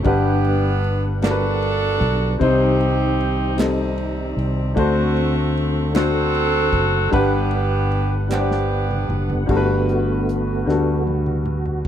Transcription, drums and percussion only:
0.04 kick, ride
0.45 ride
0.84 ride
1.22 snare, clap, ride
1.62 ride
2.01 kick, ride
2.41 kick, ride
2.81 ride
3.21 ride
3.58 snare, clap, ride
3.98 ride
4.39 ride
4.77 kick, ride
5.17 ride
5.57 ride
5.95 snare, clap, ride
6.35 ride
6.73 kick, ride
7.13 kick, ride
7.51 ride
7.92 ride
8.31 snare, clap
8.51 snare
8.91 mid tom
9.10 mid tom
9.30 floor tom
9.49 kick, crash
9.89 closed hi-hat
10.29 closed hi-hat
10.69 snare
11.07 high tom
11.26 mid tom
11.46 mid tom
11.66 floor tom
11.85 crash

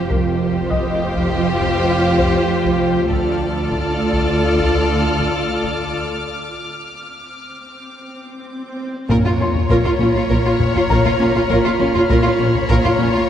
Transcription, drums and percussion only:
0.10 taiko
0.71 taiko
1.16 taiko
1.60 taiko
2.20 taiko
2.65 taiko
3.10 taiko
3.70 taiko
4.15 taiko
4.60 taiko
5.20 taiko
5.65 taiko
9.10 taiko
9.55 taiko low
9.70 taiko
9.86 taiko low
10.30 taiko
10.60 taiko low
10.75 taiko low
10.90 taiko
11.05 taiko low
11.50 taiko
11.95 taiko low
12.10 taiko
12.55 taiko low
12.70 taiko
12.85 taiko low

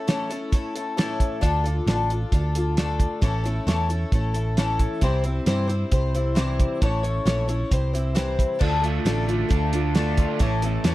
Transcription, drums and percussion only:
0.08 snare, closed hi-hat
0.31 closed hi-hat
0.52 kick, closed hi-hat
0.76 closed hi-hat
0.98 snare, closed hi-hat
1.20 kick, closed hi-hat
1.43 kick, closed hi-hat
1.66 closed hi-hat
1.88 snare, closed hi-hat
2.10 closed hi-hat
2.32 kick, closed hi-hat
2.55 closed hi-hat
2.77 snare, closed hi-hat
3.00 kick, closed hi-hat
3.22 kick, closed hi-hat
3.45 closed hi-hat
3.68 snare, closed hi-hat
3.90 closed hi-hat
4.12 kick, closed hi-hat
4.34 closed hi-hat
4.57 snare, closed hi-hat
4.79 kick, closed hi-hat
5.01 kick, closed hi-hat
5.24 closed hi-hat
5.46 snare, closed hi-hat
5.69 closed hi-hat
5.92 kick, closed hi-hat
6.15 closed hi-hat
6.36 snare, closed hi-hat
6.60 kick, closed hi-hat
6.82 kick, closed hi-hat
7.04 closed hi-hat
7.27 snare, closed hi-hat
7.49 closed hi-hat
7.71 kick, closed hi-hat
7.95 closed hi-hat
8.16 snare, closed hi-hat
8.39 kick, closed hi-hat
8.61 kick, crash
8.84 closed hi-hat
9.06 snare, closed hi-hat
9.29 closed hi-hat
9.50 kick, closed hi-hat
9.73 closed hi-hat
9.95 snare, closed hi-hat
10.17 kick, closed hi-hat
10.39 kick, closed hi-hat
10.62 closed hi-hat
10.84 snare, closed hi-hat

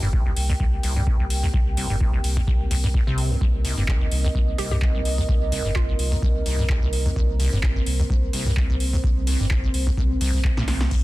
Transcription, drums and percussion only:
0.13 kick
0.36 open hi-hat
0.60 kick
0.83 open hi-hat
1.07 kick
1.30 open hi-hat
1.54 kick
1.77 open hi-hat
2.01 kick
2.24 open hi-hat
2.37 kick
2.47 kick
2.71 open hi-hat
2.94 kick
3.18 open hi-hat
3.41 kick
3.65 open hi-hat
3.88 kick, clap
4.12 open hi-hat
4.35 kick
4.58 open hi-hat
4.82 kick, clap
5.05 open hi-hat
5.29 kick
5.52 open hi-hat
5.76 kick, clap
5.99 open hi-hat
6.22 kick
6.46 open hi-hat
6.69 kick, clap
6.93 open hi-hat
7.16 kick
7.40 open hi-hat
7.63 kick, clap
7.86 open hi-hat
8.10 kick
8.33 open hi-hat
8.57 kick, clap
8.80 open hi-hat
9.04 kick
9.27 open hi-hat
9.51 kick, clap
9.74 open hi-hat
9.87 kick
9.97 kick
10.21 open hi-hat
10.44 kick, clap
10.57 snare
10.68 snare, open hi-hat
10.81 snare
10.91 kick, crash

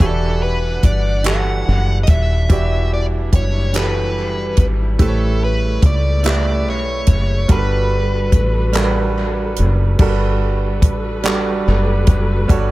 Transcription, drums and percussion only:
0.00 kick, closed hi-hat
0.83 kick, closed hi-hat
1.24 clap, closed hi-hat
2.07 kick, closed hi-hat
2.50 kick, closed hi-hat
3.33 kick, closed hi-hat
3.74 clap, closed hi-hat
4.57 kick, closed hi-hat
4.99 kick, closed hi-hat
5.82 kick, closed hi-hat
6.24 clap, closed hi-hat
7.07 kick, closed hi-hat
7.49 kick, closed hi-hat
8.32 kick, closed hi-hat
8.73 clap, closed hi-hat
9.56 closed hi-hat
9.99 kick, crash
10.82 kick, closed hi-hat
11.23 clap, closed hi-hat
12.07 kick, closed hi-hat
12.49 kick, closed hi-hat

